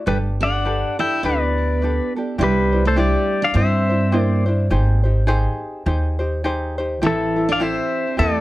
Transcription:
0.06 G1 G3 D4 G4 A4 B4
0.41 D4 G4 A4 D5 F#5
0.65 D4 G4 A4 B4
0.99 D4 E4 G4 A4 E5 G5
1.23 D2 B3 D4 G4 A4 B4 D5
1.82 D4 G4 A4 B4
2.16 D4 G4 A4
2.38 C2 G3 D4 E4 G4 C5
2.43 G4 B4
2.72 D4 E4 C5
2.85 A3 A4 C5
2.96 G3 D4 E4 G4 C5 D5
3.42 D4 D5 F5
3.54 G2 C4 D4 E4 G4 C5 E5
3.89 D4 E4 C5
4.12 D4 E4 G4 C5
4.18 A#3 D5
4.46 D4 E4 C5
4.70 G#1 D#4 G4 G#4 C5
5.03 D#4 G4 C5
5.27 D#4 G4 G#4 C5
5.86 D#2 D#4 G4 G#4 C5
6.19 D#4 G4 C5
6.44 D#4 G4 G#4 C5
6.78 D#4 G4 C5
7.02 A1 E3 C4 E4 G4 A4
7.06 E4 A4
7.36 C4 E4 A4
7.49 D4 D5 F5
7.60 C4 E4 G4 A4 C5 E5
8.17 E2 A3 C4 E4 G4 A4 D5

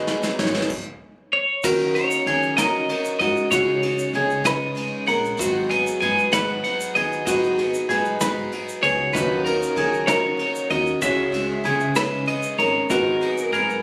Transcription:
Already playing: G#1 G#2 G#3 D#4 F#4 B4 D#5
0.07 F#3 B3 D#4 G#4, snare
0.23 F#3 B3 D#4 G#4, snare, shaker
0.39 G#1 C#5, snare
0.47 snare
0.55 F#3 B3 D#4 G#4, snare
0.62 snare
0.70 kick, crash
1.33 C#5
1.64 D#2 D#3 F#3 C#4 D#4 F#4 A#4, kick, crash, shaker
1.94 C#4 D#4 A#4 C#5, ride
2.11 shaker
2.26 D#3 F#3 C#4 D#4 G#4 A#4, ride
2.43 shaker
2.57 D#3 F#3 C#4 D#4 A#4 D#5, snare, ride, shaker
2.89 F#3 C#4 D#4 A#4, ride
3.05 shaker
3.19 G#2 C#4 D#4 F#4 A#4 D#5, ride
3.36 shaker
3.51 C#2 C#3 E3 G#3 C#4 D#4 F#4 G#4 C#5, kick, ride, shaker
3.82 G#3 C#4 D#4 G#4, ride
3.99 shaker
4.13 C#3 G#3 C#4 D#4 G#4, ride
4.30 shaker
4.44 C#3 E3 G#3 C#4 D#4 G#4 B4 D#5, snare, ride, shaker
4.75 G#3 C#4 D#4 G#4, ride
5.06 A#1 G#3 C#4 D#4 G#4 A#4 F#5, ride
5.25 shaker
5.37 G#1 G#2 D#3 F#3 B3 D#4 F#4 G#4, kick, ride, shaker
5.69 F#3 B3 D#4 G#4 G#5, ride
5.87 shaker
6.00 G#2 F#3 B3 D#4 G#4 G#5, ride
6.18 shaker
6.32 G#2 D#3 F#3 B3 D#4 G#4 B4 F#5, snare, ride, shaker
6.64 F#3 B3 D#4 G#4 F#5, ride
6.81 shaker
6.95 D#2 F#3 B3 D#4 G#4 D#5, ride
7.13 shaker
7.27 G#1 G#2 D#3 F#3 B3 D#4 F#4 G#4 D#5, kick, ride, shaker
7.43 shaker
7.58 F#3 B3 D#4 G#4, ride
7.74 shaker
7.89 G#2 F#3 B3 D#4 G#4, ride, shaker
8.05 shaker
8.21 G#2 D#3 F#3 B3 D#4 G#4 B4, kick, snare, ride, shaker
8.52 F#3 B3 D#4 G#4, ride
8.69 shaker
8.82 C#2 F#3 B3 D#4 G#4 C#5, ride
9.13 D#2 A#2 D#3 F#3 C#4 D#4 F#4 B4 C#5, kick, ride, shaker
9.45 C#4 D#4 A#4, ride
9.63 shaker
9.76 D#3 F#3 C#4 D#4 G#4 A#4, ride
9.94 shaker
10.07 D#3 F#3 A#3 C#4 D#4 F#4 A#4 C#5, snare, ride, shaker
10.37 F#3 C#4 D#4 A#4, ride
10.55 shaker
10.70 D#2 C#4 D#4 F#4 A#4 D#5, ride
10.87 shaker
11.01 C#2 C#3 E3 G#3 C#4 E4 F#4 G#4 C#5 E5, kick, ride, shaker
11.32 G#3 C#4 G#4, ride
11.64 C#3 G#3 C#4 G#4, ride
11.80 shaker
11.95 C#3 E3 G#3 C#4 E4 G#4 B4 C#5 E5, snare, ride, shaker
12.26 G#3 C#4 D#4 G#4 D#5, ride
12.43 shaker
12.58 G#1 G#3 C#4 D#4 G#4 A#4 C#5, ride
12.89 G#1 G#2 D#3 F#3 G#3 B3 D#4 F#4 G#4 A#4, kick, ride, shaker
13.21 F#3 B3 D#4 G#4, ride
13.38 shaker
13.52 G#2 F#3 B3 D#4 G#4 A#4, ride
13.70 shaker

